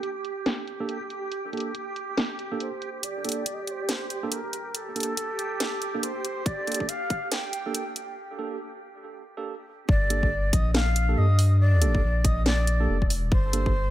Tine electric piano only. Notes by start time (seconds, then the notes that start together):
0.80 A#3 D4 G4 A4
1.53 A#3 D4 G4 A4
2.52 A#3 D4 G4 A4
3.24 A#3 D4 G4 A4
4.23 A#3 D4 G4 A4
4.96 A#3 D4 G4 A4
5.94 A#3 D4 G4 A4
6.67 A#3 D4 G4 A4
7.66 A#3 D4 G4 A4
8.39 A#3 D4 G4 A4
9.37 A#3 D4 G4 A4
10.10 A#3 D4 G4 A4
11.09 A#3 D4 G4 A4
11.82 A#3 D4 G4 A4
12.80 A#3 D4 G4 A4
13.53 A#3 D4 G4 A4